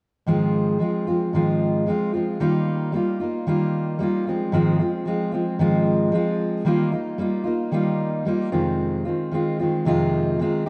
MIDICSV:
0, 0, Header, 1, 2, 480
1, 0, Start_track
1, 0, Key_signature, -4, "major"
1, 0, Tempo, 532860
1, 250, Time_signature, 4, 2, 24, 8
1, 9630, End_track
2, 0, Start_track
2, 0, Title_t, "Steel-string acoustic guitar"
2, 0, Program_c, 0, 25
2, 238, Note_on_c, 0, 44, 63
2, 246, Note_on_c, 0, 51, 68
2, 249, Note_on_c, 0, 53, 71
2, 254, Note_on_c, 0, 56, 72
2, 256, Note_on_c, 0, 60, 67
2, 260, Note_on_c, 0, 65, 65
2, 708, Note_off_c, 0, 53, 0
2, 712, Note_off_c, 0, 56, 0
2, 712, Note_on_c, 0, 53, 47
2, 720, Note_off_c, 0, 60, 0
2, 722, Note_on_c, 0, 56, 55
2, 724, Note_off_c, 0, 44, 0
2, 730, Note_on_c, 0, 60, 55
2, 736, Note_off_c, 0, 65, 0
2, 739, Note_off_c, 0, 51, 0
2, 740, Note_on_c, 0, 65, 57
2, 953, Note_off_c, 0, 65, 0
2, 961, Note_off_c, 0, 53, 0
2, 963, Note_off_c, 0, 60, 0
2, 963, Note_on_c, 0, 65, 47
2, 966, Note_off_c, 0, 56, 0
2, 974, Note_on_c, 0, 60, 45
2, 981, Note_on_c, 0, 56, 38
2, 991, Note_on_c, 0, 53, 40
2, 1200, Note_on_c, 0, 44, 61
2, 1203, Note_off_c, 0, 53, 0
2, 1206, Note_off_c, 0, 56, 0
2, 1206, Note_off_c, 0, 65, 0
2, 1209, Note_off_c, 0, 60, 0
2, 1210, Note_on_c, 0, 51, 62
2, 1213, Note_on_c, 0, 53, 67
2, 1217, Note_on_c, 0, 56, 63
2, 1219, Note_on_c, 0, 60, 59
2, 1224, Note_on_c, 0, 65, 66
2, 1675, Note_off_c, 0, 53, 0
2, 1678, Note_off_c, 0, 56, 0
2, 1679, Note_on_c, 0, 53, 55
2, 1685, Note_off_c, 0, 44, 0
2, 1688, Note_on_c, 0, 56, 61
2, 1690, Note_off_c, 0, 60, 0
2, 1701, Note_on_c, 0, 60, 61
2, 1704, Note_off_c, 0, 65, 0
2, 1706, Note_off_c, 0, 51, 0
2, 1708, Note_on_c, 0, 65, 60
2, 1910, Note_off_c, 0, 65, 0
2, 1921, Note_on_c, 0, 65, 42
2, 1922, Note_off_c, 0, 60, 0
2, 1924, Note_off_c, 0, 53, 0
2, 1929, Note_off_c, 0, 56, 0
2, 1933, Note_on_c, 0, 60, 45
2, 1941, Note_on_c, 0, 56, 37
2, 1952, Note_on_c, 0, 53, 39
2, 2162, Note_on_c, 0, 51, 67
2, 2163, Note_off_c, 0, 53, 0
2, 2165, Note_off_c, 0, 56, 0
2, 2165, Note_off_c, 0, 65, 0
2, 2166, Note_on_c, 0, 55, 73
2, 2167, Note_off_c, 0, 60, 0
2, 2168, Note_on_c, 0, 58, 73
2, 2170, Note_on_c, 0, 63, 75
2, 2178, Note_on_c, 0, 65, 78
2, 2622, Note_off_c, 0, 55, 0
2, 2632, Note_on_c, 0, 55, 53
2, 2634, Note_off_c, 0, 58, 0
2, 2645, Note_on_c, 0, 58, 56
2, 2650, Note_off_c, 0, 63, 0
2, 2653, Note_on_c, 0, 63, 55
2, 2658, Note_off_c, 0, 65, 0
2, 2661, Note_on_c, 0, 65, 58
2, 2688, Note_off_c, 0, 51, 0
2, 2870, Note_off_c, 0, 65, 0
2, 2881, Note_off_c, 0, 55, 0
2, 2881, Note_on_c, 0, 65, 46
2, 2882, Note_off_c, 0, 63, 0
2, 2887, Note_off_c, 0, 58, 0
2, 2893, Note_on_c, 0, 63, 40
2, 2912, Note_on_c, 0, 58, 38
2, 3120, Note_off_c, 0, 58, 0
2, 3123, Note_off_c, 0, 63, 0
2, 3123, Note_on_c, 0, 51, 64
2, 3125, Note_off_c, 0, 65, 0
2, 3129, Note_on_c, 0, 55, 66
2, 3131, Note_on_c, 0, 58, 66
2, 3134, Note_on_c, 0, 63, 66
2, 3141, Note_on_c, 0, 65, 79
2, 3582, Note_off_c, 0, 55, 0
2, 3593, Note_on_c, 0, 55, 58
2, 3594, Note_off_c, 0, 58, 0
2, 3605, Note_on_c, 0, 58, 64
2, 3611, Note_off_c, 0, 63, 0
2, 3614, Note_on_c, 0, 63, 61
2, 3620, Note_off_c, 0, 65, 0
2, 3626, Note_on_c, 0, 65, 67
2, 3653, Note_off_c, 0, 51, 0
2, 3834, Note_off_c, 0, 65, 0
2, 3841, Note_off_c, 0, 55, 0
2, 3844, Note_on_c, 0, 65, 41
2, 3847, Note_off_c, 0, 58, 0
2, 3852, Note_off_c, 0, 63, 0
2, 3860, Note_on_c, 0, 60, 47
2, 3868, Note_on_c, 0, 56, 46
2, 3872, Note_on_c, 0, 53, 36
2, 4073, Note_on_c, 0, 44, 74
2, 4076, Note_off_c, 0, 53, 0
2, 4082, Note_off_c, 0, 56, 0
2, 4082, Note_on_c, 0, 51, 79
2, 4083, Note_off_c, 0, 60, 0
2, 4084, Note_off_c, 0, 65, 0
2, 4087, Note_on_c, 0, 53, 82
2, 4093, Note_on_c, 0, 56, 81
2, 4094, Note_on_c, 0, 60, 82
2, 4094, Note_on_c, 0, 65, 79
2, 4307, Note_off_c, 0, 65, 0
2, 4315, Note_off_c, 0, 60, 0
2, 4318, Note_on_c, 0, 65, 44
2, 4321, Note_off_c, 0, 44, 0
2, 4324, Note_off_c, 0, 56, 0
2, 4326, Note_off_c, 0, 51, 0
2, 4326, Note_on_c, 0, 60, 42
2, 4328, Note_off_c, 0, 53, 0
2, 4335, Note_on_c, 0, 56, 44
2, 4346, Note_on_c, 0, 53, 37
2, 4543, Note_off_c, 0, 53, 0
2, 4553, Note_on_c, 0, 53, 53
2, 4557, Note_off_c, 0, 56, 0
2, 4560, Note_off_c, 0, 60, 0
2, 4564, Note_off_c, 0, 65, 0
2, 4567, Note_on_c, 0, 56, 60
2, 4571, Note_on_c, 0, 60, 63
2, 4583, Note_on_c, 0, 65, 63
2, 4781, Note_off_c, 0, 65, 0
2, 4792, Note_on_c, 0, 65, 52
2, 4796, Note_off_c, 0, 60, 0
2, 4801, Note_off_c, 0, 53, 0
2, 4804, Note_off_c, 0, 56, 0
2, 4807, Note_on_c, 0, 60, 53
2, 4814, Note_on_c, 0, 56, 43
2, 4820, Note_on_c, 0, 53, 41
2, 5034, Note_off_c, 0, 53, 0
2, 5037, Note_on_c, 0, 44, 57
2, 5038, Note_off_c, 0, 56, 0
2, 5038, Note_on_c, 0, 51, 69
2, 5041, Note_off_c, 0, 65, 0
2, 5042, Note_off_c, 0, 60, 0
2, 5045, Note_on_c, 0, 53, 72
2, 5049, Note_on_c, 0, 56, 71
2, 5053, Note_on_c, 0, 60, 78
2, 5057, Note_on_c, 0, 65, 71
2, 5507, Note_off_c, 0, 53, 0
2, 5510, Note_on_c, 0, 53, 66
2, 5512, Note_off_c, 0, 56, 0
2, 5521, Note_off_c, 0, 60, 0
2, 5523, Note_off_c, 0, 44, 0
2, 5523, Note_on_c, 0, 56, 65
2, 5532, Note_on_c, 0, 60, 68
2, 5536, Note_off_c, 0, 65, 0
2, 5537, Note_off_c, 0, 51, 0
2, 5540, Note_on_c, 0, 65, 79
2, 5989, Note_on_c, 0, 51, 72
2, 5993, Note_off_c, 0, 53, 0
2, 5997, Note_on_c, 0, 55, 72
2, 5999, Note_off_c, 0, 56, 0
2, 6002, Note_on_c, 0, 58, 86
2, 6004, Note_off_c, 0, 60, 0
2, 6008, Note_on_c, 0, 63, 73
2, 6009, Note_off_c, 0, 65, 0
2, 6013, Note_on_c, 0, 65, 76
2, 6219, Note_off_c, 0, 65, 0
2, 6229, Note_on_c, 0, 65, 46
2, 6234, Note_off_c, 0, 63, 0
2, 6239, Note_off_c, 0, 51, 0
2, 6243, Note_off_c, 0, 55, 0
2, 6244, Note_on_c, 0, 63, 45
2, 6246, Note_off_c, 0, 58, 0
2, 6255, Note_on_c, 0, 58, 36
2, 6467, Note_off_c, 0, 58, 0
2, 6469, Note_on_c, 0, 55, 59
2, 6477, Note_off_c, 0, 63, 0
2, 6478, Note_on_c, 0, 58, 66
2, 6479, Note_off_c, 0, 65, 0
2, 6488, Note_on_c, 0, 63, 62
2, 6497, Note_on_c, 0, 65, 64
2, 6689, Note_off_c, 0, 65, 0
2, 6700, Note_on_c, 0, 65, 49
2, 6704, Note_off_c, 0, 63, 0
2, 6715, Note_on_c, 0, 63, 51
2, 6719, Note_off_c, 0, 55, 0
2, 6719, Note_off_c, 0, 58, 0
2, 6730, Note_on_c, 0, 58, 48
2, 6950, Note_on_c, 0, 51, 64
2, 6952, Note_off_c, 0, 58, 0
2, 6954, Note_off_c, 0, 65, 0
2, 6957, Note_on_c, 0, 55, 70
2, 6958, Note_off_c, 0, 63, 0
2, 6963, Note_on_c, 0, 58, 62
2, 6969, Note_on_c, 0, 63, 73
2, 6974, Note_on_c, 0, 65, 84
2, 7423, Note_off_c, 0, 55, 0
2, 7433, Note_off_c, 0, 58, 0
2, 7433, Note_on_c, 0, 55, 60
2, 7444, Note_on_c, 0, 58, 67
2, 7451, Note_off_c, 0, 63, 0
2, 7454, Note_on_c, 0, 63, 69
2, 7458, Note_off_c, 0, 65, 0
2, 7462, Note_on_c, 0, 65, 63
2, 7489, Note_off_c, 0, 51, 0
2, 7664, Note_off_c, 0, 65, 0
2, 7672, Note_off_c, 0, 63, 0
2, 7674, Note_on_c, 0, 65, 63
2, 7676, Note_on_c, 0, 60, 62
2, 7677, Note_off_c, 0, 58, 0
2, 7679, Note_off_c, 0, 55, 0
2, 7680, Note_on_c, 0, 56, 53
2, 7683, Note_on_c, 0, 51, 58
2, 7691, Note_on_c, 0, 41, 55
2, 7693, Note_on_c, 0, 48, 58
2, 8141, Note_off_c, 0, 65, 0
2, 8152, Note_on_c, 0, 65, 44
2, 8159, Note_off_c, 0, 60, 0
2, 8162, Note_on_c, 0, 60, 42
2, 8164, Note_off_c, 0, 56, 0
2, 8170, Note_off_c, 0, 41, 0
2, 8171, Note_off_c, 0, 48, 0
2, 8177, Note_on_c, 0, 56, 39
2, 8178, Note_off_c, 0, 51, 0
2, 8182, Note_on_c, 0, 51, 38
2, 8380, Note_off_c, 0, 51, 0
2, 8391, Note_on_c, 0, 51, 55
2, 8392, Note_off_c, 0, 56, 0
2, 8400, Note_off_c, 0, 65, 0
2, 8403, Note_off_c, 0, 60, 0
2, 8403, Note_on_c, 0, 56, 54
2, 8414, Note_on_c, 0, 60, 58
2, 8421, Note_on_c, 0, 65, 64
2, 8630, Note_off_c, 0, 65, 0
2, 8639, Note_off_c, 0, 51, 0
2, 8641, Note_off_c, 0, 60, 0
2, 8641, Note_on_c, 0, 65, 47
2, 8645, Note_off_c, 0, 56, 0
2, 8651, Note_on_c, 0, 60, 49
2, 8666, Note_on_c, 0, 56, 43
2, 8672, Note_on_c, 0, 51, 47
2, 8874, Note_off_c, 0, 51, 0
2, 8875, Note_on_c, 0, 41, 72
2, 8881, Note_off_c, 0, 60, 0
2, 8883, Note_off_c, 0, 56, 0
2, 8883, Note_on_c, 0, 48, 70
2, 8884, Note_off_c, 0, 65, 0
2, 8885, Note_on_c, 0, 51, 78
2, 8892, Note_on_c, 0, 60, 76
2, 8894, Note_on_c, 0, 56, 75
2, 8897, Note_on_c, 0, 65, 80
2, 9359, Note_off_c, 0, 51, 0
2, 9361, Note_off_c, 0, 41, 0
2, 9363, Note_on_c, 0, 51, 66
2, 9364, Note_off_c, 0, 56, 0
2, 9366, Note_off_c, 0, 48, 0
2, 9372, Note_off_c, 0, 65, 0
2, 9375, Note_on_c, 0, 56, 62
2, 9379, Note_off_c, 0, 60, 0
2, 9383, Note_on_c, 0, 60, 70
2, 9390, Note_on_c, 0, 65, 72
2, 9600, Note_off_c, 0, 65, 0
2, 9603, Note_on_c, 0, 67, 60
2, 9605, Note_off_c, 0, 51, 0
2, 9605, Note_off_c, 0, 60, 0
2, 9610, Note_off_c, 0, 56, 0
2, 9630, Note_off_c, 0, 67, 0
2, 9630, End_track
0, 0, End_of_file